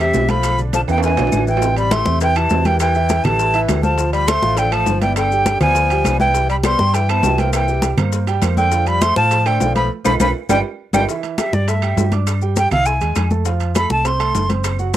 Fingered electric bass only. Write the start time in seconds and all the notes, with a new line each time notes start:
Already playing: E2
0.14 B1
0.88 E2
1.18 B1
1.33 A1
2.06 E2
2.50 E2
3.24 A1
3.68 D2
4.42 A1
4.87 G1
5.61 D2
6.05 C2
6.79 G2
7.23 C2
7.97 G2
8.42 F2
9.16 A2
9.60 B1
10.05 B1
10.19 B1
10.49 G1
10.93 G1
11.53 G2
11.97 G2
12.71 C2
13.01 D#2
13.16 F2
13.90 C2
14.35 F#1